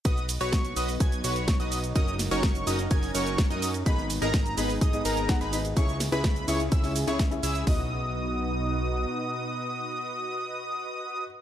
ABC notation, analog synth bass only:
X:1
M:4/4
L:1/16
Q:1/4=126
K:B
V:1 name="Analog synth bass" clef=bass
B,,,3 B,,,3 B,,,2 B,,,2 B,,,3 B,,,3 | F,,,3 F,,,3 F,,,2 F,,,2 F,,,3 F,,3 | G,,,3 G,,,3 G,,,2 G,,,2 G,,,3 G,,,3 | C,,3 C,,3 C,,2 C,,3 C,,3 C,,2 |
B,,,12 z4 | z16 |]